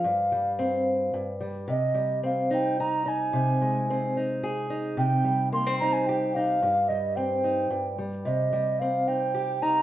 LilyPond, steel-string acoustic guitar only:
\new Staff \with { instrumentName = "Steel-string acoustic guitar" } { \time 3/4 \key c \minor \tempo 4 = 110 << { r4 c'4 r4 | r4 c'8 ees'8 ees'8 ees'8 | r4 c'8 ees'8 aes'8 ees'8 | r4 bes16 c'16 ees'8 g'8 ees'8 |
r4 c'8 ees'8 r4 | r4 c'8 ees'8 g'8 ees'8 | } \\ { g,8 g4. g,8 g8 | c8 g2~ g8 | c8 aes2~ aes8 | c8 g2~ g8 |
g,8 g4. g,8 g8 | c8 g2~ g8 | } >> }